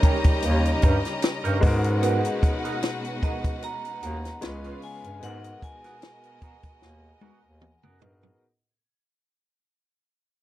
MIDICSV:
0, 0, Header, 1, 9, 480
1, 0, Start_track
1, 0, Key_signature, 5, "minor"
1, 0, Tempo, 797978
1, 1222, Time_signature, 4, 2, 24, 8
1, 6272, End_track
2, 0, Start_track
2, 0, Title_t, "Vibraphone"
2, 0, Program_c, 0, 11
2, 0, Note_on_c, 0, 73, 87
2, 720, Note_off_c, 0, 73, 0
2, 1941, Note_on_c, 0, 75, 90
2, 2188, Note_off_c, 0, 75, 0
2, 2189, Note_on_c, 0, 82, 114
2, 2641, Note_off_c, 0, 82, 0
2, 2909, Note_on_c, 0, 80, 103
2, 3149, Note_on_c, 0, 78, 108
2, 3153, Note_off_c, 0, 80, 0
2, 3387, Note_on_c, 0, 80, 94
2, 3392, Note_off_c, 0, 78, 0
2, 4800, Note_off_c, 0, 80, 0
2, 6272, End_track
3, 0, Start_track
3, 0, Title_t, "Violin section"
3, 0, Program_c, 1, 48
3, 0, Note_on_c, 1, 67, 82
3, 0, Note_on_c, 1, 75, 82
3, 0, Note_on_c, 1, 82, 92
3, 955, Note_off_c, 1, 82, 0
3, 956, Note_off_c, 1, 67, 0
3, 957, Note_off_c, 1, 75, 0
3, 983, Note_on_c, 1, 78, 107
3, 984, Note_on_c, 1, 63, 96
3, 985, Note_on_c, 1, 71, 99
3, 2638, Note_off_c, 1, 78, 0
3, 2639, Note_off_c, 1, 63, 0
3, 2639, Note_off_c, 1, 71, 0
3, 2662, Note_on_c, 1, 71, 77
3, 2663, Note_on_c, 1, 61, 77
3, 2665, Note_on_c, 1, 77, 85
3, 3132, Note_off_c, 1, 71, 0
3, 3133, Note_off_c, 1, 61, 0
3, 3134, Note_off_c, 1, 77, 0
3, 3144, Note_on_c, 1, 70, 83
3, 3145, Note_on_c, 1, 75, 94
3, 3146, Note_on_c, 1, 59, 85
3, 5039, Note_off_c, 1, 70, 0
3, 5039, Note_off_c, 1, 75, 0
3, 5040, Note_off_c, 1, 59, 0
3, 6272, End_track
4, 0, Start_track
4, 0, Title_t, "Clean electric guitar"
4, 0, Program_c, 2, 27
4, 17, Note_on_c, 2, 61, 53
4, 22, Note_on_c, 2, 67, 53
4, 26, Note_on_c, 2, 70, 63
4, 98, Note_off_c, 2, 61, 0
4, 100, Note_off_c, 2, 67, 0
4, 102, Note_off_c, 2, 70, 0
4, 496, Note_on_c, 2, 61, 62
4, 502, Note_on_c, 2, 67, 63
4, 506, Note_on_c, 2, 70, 66
4, 577, Note_off_c, 2, 61, 0
4, 580, Note_off_c, 2, 67, 0
4, 582, Note_off_c, 2, 70, 0
4, 866, Note_on_c, 2, 70, 85
4, 873, Note_on_c, 2, 67, 70
4, 877, Note_on_c, 2, 61, 68
4, 953, Note_off_c, 2, 70, 0
4, 957, Note_off_c, 2, 67, 0
4, 959, Note_off_c, 2, 61, 0
4, 1214, Note_on_c, 2, 59, 85
4, 1219, Note_on_c, 2, 66, 85
4, 1223, Note_on_c, 2, 70, 83
4, 1318, Note_off_c, 2, 59, 0
4, 1320, Note_off_c, 2, 66, 0
4, 1322, Note_off_c, 2, 70, 0
4, 1588, Note_on_c, 2, 70, 61
4, 1593, Note_on_c, 2, 66, 61
4, 1595, Note_on_c, 2, 59, 51
4, 1656, Note_off_c, 2, 70, 0
4, 1659, Note_off_c, 2, 66, 0
4, 1660, Note_off_c, 2, 59, 0
4, 1938, Note_on_c, 2, 59, 51
4, 1943, Note_on_c, 2, 66, 57
4, 1948, Note_on_c, 2, 70, 64
4, 2018, Note_off_c, 2, 59, 0
4, 2020, Note_off_c, 2, 66, 0
4, 2023, Note_off_c, 2, 70, 0
4, 2418, Note_on_c, 2, 59, 57
4, 2424, Note_on_c, 2, 66, 61
4, 2427, Note_on_c, 2, 70, 68
4, 2498, Note_off_c, 2, 59, 0
4, 2501, Note_off_c, 2, 66, 0
4, 2502, Note_off_c, 2, 70, 0
4, 2795, Note_on_c, 2, 71, 78
4, 2800, Note_on_c, 2, 65, 66
4, 2804, Note_on_c, 2, 61, 60
4, 2878, Note_off_c, 2, 71, 0
4, 2880, Note_off_c, 2, 65, 0
4, 2883, Note_off_c, 2, 61, 0
4, 3140, Note_on_c, 2, 59, 82
4, 3144, Note_on_c, 2, 66, 90
4, 3149, Note_on_c, 2, 70, 84
4, 3240, Note_off_c, 2, 59, 0
4, 3242, Note_off_c, 2, 66, 0
4, 3245, Note_off_c, 2, 70, 0
4, 3511, Note_on_c, 2, 70, 55
4, 3517, Note_on_c, 2, 66, 47
4, 3521, Note_on_c, 2, 59, 50
4, 3578, Note_off_c, 2, 70, 0
4, 3580, Note_off_c, 2, 66, 0
4, 3583, Note_off_c, 2, 59, 0
4, 3863, Note_on_c, 2, 59, 47
4, 3868, Note_on_c, 2, 66, 61
4, 3872, Note_on_c, 2, 70, 65
4, 3940, Note_off_c, 2, 59, 0
4, 3943, Note_off_c, 2, 66, 0
4, 3945, Note_off_c, 2, 70, 0
4, 4339, Note_on_c, 2, 59, 76
4, 4343, Note_on_c, 2, 66, 89
4, 4348, Note_on_c, 2, 70, 83
4, 4440, Note_off_c, 2, 59, 0
4, 4442, Note_off_c, 2, 66, 0
4, 4444, Note_off_c, 2, 70, 0
4, 4713, Note_on_c, 2, 70, 83
4, 4717, Note_on_c, 2, 66, 74
4, 4721, Note_on_c, 2, 59, 64
4, 4797, Note_off_c, 2, 70, 0
4, 4799, Note_off_c, 2, 66, 0
4, 4801, Note_off_c, 2, 59, 0
4, 6272, End_track
5, 0, Start_track
5, 0, Title_t, "Grand piano"
5, 0, Program_c, 3, 0
5, 0, Control_c, 3, 64, 127
5, 0, Note_on_c, 3, 55, 67
5, 0, Note_on_c, 3, 58, 58
5, 0, Note_on_c, 3, 61, 60
5, 0, Note_on_c, 3, 63, 60
5, 0, Note_on_c, 3, 70, 76
5, 955, Note_off_c, 3, 58, 0
5, 959, Note_off_c, 3, 61, 0
5, 965, Note_off_c, 3, 63, 0
5, 967, Note_on_c, 3, 56, 80
5, 969, Note_off_c, 3, 70, 0
5, 970, Note_off_c, 3, 55, 0
5, 975, Note_on_c, 3, 59, 73
5, 984, Note_on_c, 3, 63, 70
5, 990, Control_c, 3, 64, 0
5, 995, Note_on_c, 3, 66, 73
5, 1003, Note_on_c, 3, 70, 86
5, 1106, Control_c, 3, 64, 127
5, 2630, Note_off_c, 3, 56, 0
5, 2634, Note_off_c, 3, 59, 0
5, 2639, Note_off_c, 3, 63, 0
5, 2644, Note_off_c, 3, 66, 0
5, 2648, Note_off_c, 3, 70, 0
5, 2653, Note_on_c, 3, 56, 69
5, 2660, Note_on_c, 3, 59, 64
5, 2663, Note_on_c, 3, 61, 65
5, 2668, Note_on_c, 3, 65, 59
5, 2669, Control_c, 3, 64, 0
5, 2672, Note_on_c, 3, 71, 79
5, 2788, Control_c, 3, 64, 127
5, 3118, Note_off_c, 3, 56, 0
5, 3127, Note_on_c, 3, 56, 62
5, 3128, Note_off_c, 3, 59, 0
5, 3137, Note_on_c, 3, 59, 60
5, 3142, Note_off_c, 3, 61, 0
5, 3145, Note_off_c, 3, 65, 0
5, 3145, Note_on_c, 3, 63, 59
5, 3147, Note_off_c, 3, 71, 0
5, 3149, Control_c, 3, 64, 0
5, 3154, Note_on_c, 3, 66, 60
5, 3162, Note_on_c, 3, 70, 74
5, 3246, Control_c, 3, 64, 127
5, 4790, Note_off_c, 3, 56, 0
5, 4795, Note_off_c, 3, 59, 0
5, 4799, Note_off_c, 3, 63, 0
5, 4804, Note_off_c, 3, 66, 0
5, 4808, Note_off_c, 3, 70, 0
5, 4812, Note_on_c, 3, 68, 59
5, 4817, Note_on_c, 3, 59, 54
5, 4823, Note_on_c, 3, 63, 53
5, 4829, Note_on_c, 3, 66, 52
5, 4831, Note_on_c, 3, 70, 65
5, 5057, Note_off_c, 3, 68, 0
5, 5060, Note_off_c, 3, 59, 0
5, 5062, Note_off_c, 3, 63, 0
5, 5065, Note_off_c, 3, 66, 0
5, 5066, Note_off_c, 3, 70, 0
5, 5070, Control_c, 3, 64, 0
5, 6272, End_track
6, 0, Start_track
6, 0, Title_t, "String section"
6, 0, Program_c, 4, 48
6, 0, Note_on_c, 4, 49, 83
6, 0, Note_on_c, 4, 55, 79
6, 0, Note_on_c, 4, 61, 76
6, 0, Note_on_c, 4, 63, 96
6, 966, Note_off_c, 4, 55, 0
6, 966, Note_off_c, 4, 63, 0
6, 967, Note_off_c, 4, 49, 0
6, 979, Note_on_c, 4, 66, 98
6, 981, Note_on_c, 4, 56, 82
6, 982, Note_on_c, 4, 47, 94
6, 2639, Note_off_c, 4, 61, 0
6, 2644, Note_off_c, 4, 66, 0
6, 2645, Note_off_c, 4, 47, 0
6, 2645, Note_off_c, 4, 56, 0
6, 2657, Note_on_c, 4, 59, 69
6, 2658, Note_on_c, 4, 49, 76
6, 2658, Note_on_c, 4, 56, 71
6, 2659, Note_on_c, 4, 65, 86
6, 3135, Note_off_c, 4, 49, 0
6, 3135, Note_off_c, 4, 56, 0
6, 3135, Note_off_c, 4, 59, 0
6, 3136, Note_off_c, 4, 65, 0
6, 3143, Note_on_c, 4, 70, 74
6, 3145, Note_on_c, 4, 47, 82
6, 3145, Note_on_c, 4, 66, 95
6, 3146, Note_on_c, 4, 68, 77
6, 5043, Note_off_c, 4, 70, 0
6, 5044, Note_off_c, 4, 47, 0
6, 5044, Note_off_c, 4, 66, 0
6, 5045, Note_off_c, 4, 68, 0
6, 6272, End_track
7, 0, Start_track
7, 0, Title_t, "Bass clarinet"
7, 0, Program_c, 5, 71
7, 261, Note_on_c, 5, 39, 105
7, 446, Note_off_c, 5, 39, 0
7, 503, Note_on_c, 5, 43, 102
7, 602, Note_off_c, 5, 43, 0
7, 873, Note_on_c, 5, 43, 88
7, 957, Note_off_c, 5, 43, 0
7, 981, Note_on_c, 5, 44, 99
7, 1350, Note_off_c, 5, 44, 0
7, 2424, Note_on_c, 5, 39, 101
7, 2608, Note_off_c, 5, 39, 0
7, 2666, Note_on_c, 5, 37, 105
7, 2849, Note_off_c, 5, 37, 0
7, 3036, Note_on_c, 5, 43, 84
7, 3119, Note_off_c, 5, 43, 0
7, 3146, Note_on_c, 5, 44, 114
7, 3329, Note_off_c, 5, 44, 0
7, 4103, Note_on_c, 5, 39, 101
7, 4287, Note_off_c, 5, 39, 0
7, 4342, Note_on_c, 5, 39, 49
7, 4394, Note_off_c, 5, 39, 0
7, 4473, Note_on_c, 5, 39, 94
7, 4656, Note_off_c, 5, 39, 0
7, 4716, Note_on_c, 5, 42, 84
7, 4799, Note_off_c, 5, 42, 0
7, 4824, Note_on_c, 5, 43, 90
7, 5008, Note_off_c, 5, 43, 0
7, 6272, End_track
8, 0, Start_track
8, 0, Title_t, "Muted clean electric guitar strokes"
8, 148, Note_on_c, 9, 29, 50
8, 208, Note_off_c, 9, 29, 0
8, 257, Note_on_c, 9, 29, 34
8, 317, Note_off_c, 9, 29, 0
8, 627, Note_on_c, 9, 29, 40
8, 687, Note_off_c, 9, 29, 0
8, 737, Note_on_c, 9, 29, 37
8, 797, Note_off_c, 9, 29, 0
8, 977, Note_on_c, 9, 29, 38
8, 1037, Note_off_c, 9, 29, 0
8, 1107, Note_on_c, 9, 29, 49
8, 1167, Note_off_c, 9, 29, 0
8, 1457, Note_on_c, 9, 29, 36
8, 1517, Note_off_c, 9, 29, 0
8, 1700, Note_on_c, 9, 29, 49
8, 1760, Note_off_c, 9, 29, 0
8, 2067, Note_on_c, 9, 29, 43
8, 2127, Note_off_c, 9, 29, 0
8, 2179, Note_on_c, 9, 29, 41
8, 2239, Note_off_c, 9, 29, 0
8, 2552, Note_on_c, 9, 29, 39
8, 2612, Note_off_c, 9, 29, 0
8, 2664, Note_on_c, 9, 29, 33
8, 2724, Note_off_c, 9, 29, 0
8, 2903, Note_on_c, 9, 29, 43
8, 2963, Note_off_c, 9, 29, 0
8, 3032, Note_on_c, 9, 29, 45
8, 3092, Note_off_c, 9, 29, 0
8, 3383, Note_on_c, 9, 29, 48
8, 3443, Note_off_c, 9, 29, 0
8, 3622, Note_on_c, 9, 29, 38
8, 3682, Note_off_c, 9, 29, 0
8, 3997, Note_on_c, 9, 29, 41
8, 4057, Note_off_c, 9, 29, 0
8, 4103, Note_on_c, 9, 29, 42
8, 4163, Note_off_c, 9, 29, 0
8, 4230, Note_on_c, 9, 29, 41
8, 4290, Note_off_c, 9, 29, 0
8, 4472, Note_on_c, 9, 29, 40
8, 4533, Note_off_c, 9, 29, 0
8, 4584, Note_on_c, 9, 29, 35
8, 4645, Note_off_c, 9, 29, 0
8, 4821, Note_on_c, 9, 29, 42
8, 4881, Note_off_c, 9, 29, 0
8, 4951, Note_on_c, 9, 29, 40
8, 5011, Note_off_c, 9, 29, 0
8, 6272, End_track
9, 0, Start_track
9, 0, Title_t, "Drums"
9, 18, Note_on_c, 9, 42, 75
9, 19, Note_on_c, 9, 36, 101
9, 78, Note_off_c, 9, 42, 0
9, 79, Note_off_c, 9, 36, 0
9, 145, Note_on_c, 9, 42, 64
9, 149, Note_on_c, 9, 36, 102
9, 206, Note_off_c, 9, 42, 0
9, 209, Note_off_c, 9, 36, 0
9, 255, Note_on_c, 9, 42, 95
9, 316, Note_off_c, 9, 42, 0
9, 394, Note_on_c, 9, 42, 53
9, 454, Note_off_c, 9, 42, 0
9, 493, Note_on_c, 9, 42, 78
9, 501, Note_on_c, 9, 36, 90
9, 554, Note_off_c, 9, 42, 0
9, 561, Note_off_c, 9, 36, 0
9, 632, Note_on_c, 9, 42, 54
9, 635, Note_on_c, 9, 38, 34
9, 692, Note_off_c, 9, 42, 0
9, 695, Note_off_c, 9, 38, 0
9, 735, Note_on_c, 9, 42, 97
9, 746, Note_on_c, 9, 38, 111
9, 795, Note_off_c, 9, 42, 0
9, 806, Note_off_c, 9, 38, 0
9, 870, Note_on_c, 9, 42, 48
9, 930, Note_off_c, 9, 42, 0
9, 976, Note_on_c, 9, 46, 67
9, 980, Note_on_c, 9, 36, 105
9, 1036, Note_off_c, 9, 46, 0
9, 1040, Note_off_c, 9, 36, 0
9, 1108, Note_on_c, 9, 42, 63
9, 1168, Note_off_c, 9, 42, 0
9, 1220, Note_on_c, 9, 42, 95
9, 1280, Note_off_c, 9, 42, 0
9, 1352, Note_on_c, 9, 42, 57
9, 1412, Note_off_c, 9, 42, 0
9, 1461, Note_on_c, 9, 36, 99
9, 1465, Note_on_c, 9, 42, 72
9, 1521, Note_off_c, 9, 36, 0
9, 1525, Note_off_c, 9, 42, 0
9, 1593, Note_on_c, 9, 42, 58
9, 1654, Note_off_c, 9, 42, 0
9, 1699, Note_on_c, 9, 42, 99
9, 1707, Note_on_c, 9, 38, 120
9, 1759, Note_off_c, 9, 42, 0
9, 1767, Note_off_c, 9, 38, 0
9, 1832, Note_on_c, 9, 42, 55
9, 1892, Note_off_c, 9, 42, 0
9, 1941, Note_on_c, 9, 36, 101
9, 1943, Note_on_c, 9, 42, 70
9, 2001, Note_off_c, 9, 36, 0
9, 2003, Note_off_c, 9, 42, 0
9, 2071, Note_on_c, 9, 36, 102
9, 2071, Note_on_c, 9, 42, 57
9, 2131, Note_off_c, 9, 36, 0
9, 2131, Note_off_c, 9, 42, 0
9, 2181, Note_on_c, 9, 42, 90
9, 2241, Note_off_c, 9, 42, 0
9, 2315, Note_on_c, 9, 42, 49
9, 2375, Note_off_c, 9, 42, 0
9, 2422, Note_on_c, 9, 42, 73
9, 2482, Note_off_c, 9, 42, 0
9, 2557, Note_on_c, 9, 42, 52
9, 2560, Note_on_c, 9, 38, 36
9, 2617, Note_off_c, 9, 42, 0
9, 2620, Note_off_c, 9, 38, 0
9, 2657, Note_on_c, 9, 42, 103
9, 2668, Note_on_c, 9, 38, 111
9, 2717, Note_off_c, 9, 42, 0
9, 2728, Note_off_c, 9, 38, 0
9, 2793, Note_on_c, 9, 42, 47
9, 2853, Note_off_c, 9, 42, 0
9, 2899, Note_on_c, 9, 46, 67
9, 2959, Note_off_c, 9, 46, 0
9, 3034, Note_on_c, 9, 42, 64
9, 3094, Note_off_c, 9, 42, 0
9, 3143, Note_on_c, 9, 42, 90
9, 3203, Note_off_c, 9, 42, 0
9, 3273, Note_on_c, 9, 42, 56
9, 3333, Note_off_c, 9, 42, 0
9, 3383, Note_on_c, 9, 36, 101
9, 3388, Note_on_c, 9, 42, 66
9, 3443, Note_off_c, 9, 36, 0
9, 3448, Note_off_c, 9, 42, 0
9, 3514, Note_on_c, 9, 42, 55
9, 3517, Note_on_c, 9, 38, 37
9, 3574, Note_off_c, 9, 42, 0
9, 3577, Note_off_c, 9, 38, 0
9, 3621, Note_on_c, 9, 42, 96
9, 3629, Note_on_c, 9, 38, 122
9, 3681, Note_off_c, 9, 42, 0
9, 3689, Note_off_c, 9, 38, 0
9, 3751, Note_on_c, 9, 42, 54
9, 3811, Note_off_c, 9, 42, 0
9, 3860, Note_on_c, 9, 42, 74
9, 3861, Note_on_c, 9, 36, 102
9, 3921, Note_off_c, 9, 36, 0
9, 3921, Note_off_c, 9, 42, 0
9, 3989, Note_on_c, 9, 42, 58
9, 3991, Note_on_c, 9, 36, 102
9, 4049, Note_off_c, 9, 42, 0
9, 4051, Note_off_c, 9, 36, 0
9, 4103, Note_on_c, 9, 38, 61
9, 4163, Note_off_c, 9, 38, 0
9, 4338, Note_on_c, 9, 48, 76
9, 4398, Note_off_c, 9, 48, 0
9, 4581, Note_on_c, 9, 47, 92
9, 4641, Note_off_c, 9, 47, 0
9, 4711, Note_on_c, 9, 45, 84
9, 4771, Note_off_c, 9, 45, 0
9, 4822, Note_on_c, 9, 43, 110
9, 4883, Note_off_c, 9, 43, 0
9, 4951, Note_on_c, 9, 43, 92
9, 5011, Note_off_c, 9, 43, 0
9, 6272, End_track
0, 0, End_of_file